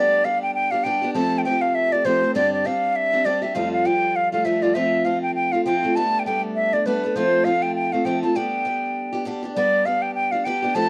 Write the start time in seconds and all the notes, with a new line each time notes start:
Already playing: G3 B3 D4 G4 D5
0.24 G3 B3 D4 G4 F5
0.42 G5
0.54 G5
0.71 B3 D4 G4 F5
0.84 G3 B3 D4 G4 G5
1.02 B3 D4 G4
1.14 F3 A3 C4 G4 A5
1.38 G5
1.44 F3 A3 C4 G4 G5
1.61 F5
1.75 E5
1.92 A3 C4 G4 D5
2.05 F3 A3 C4 G4 C5
2.22 A3 C4 G4
2.35 G2 D3 G3 C4 D4 G4 D5
2.53 D5
2.64 G3 C4 D4 G4 F5
2.96 E5
3.12 G3 C4 D4 G4
3.25 G3 C4 D4 G4 D5
3.42 G3 C4 D4 G4 E5
3.55 F2 C3 F3 G3 A3 F4 F5
3.72 F5
3.85 F3 G3 A3 F4 G5
4.16 F5
4.32 F3 G3 A3 F4 F5
4.45 F3 G3 A3 F4 E5
4.62 F3 G3 A3 F4 D5
4.74 F3 A3 C4 F4 E5
5.05 F3 A3 C4 F4 F5
5.22 G5
5.35 G5
5.52 A3 C4 F4 F5
5.65 F3 A3 C4 F4 G5
5.83 A3 C4 F4
5.96 G3 A3 B3 D4 A5
6.19 G5
6.26 G3 A3 B3 D4 G5
6.56 E5
6.73 A3 B3 D4 D5
6.86 G3 A3 B3 D4 B4
7.04 A3 B3 D4
7.15 F3 A3 C4 F4 C5
7.45 F3 A3 C4 F4 F5
7.62 G5
7.75 G5
7.92 A3 C4 F4 F5
8.05 F3 A3 C4 F4 G5
8.23 A3 C4 F4 A5
8.35 G3 B3 D4 G4 G5
8.65 G3 B3 D4 G4
9.13 B3 D4 G4
9.25 G3 B3 D4 G4
9.43 B3 D4 G4
9.55 G3 B3 D4 G4 D5
9.85 G3 B3 D4 G4 F5
10.02 G5
10.14 G5
10.32 B3 D4 G4 F5
10.45 G3 B3 D4 G4 G5
10.62 B3 D4 G4
10.75 F3 A3 C4 G4 A5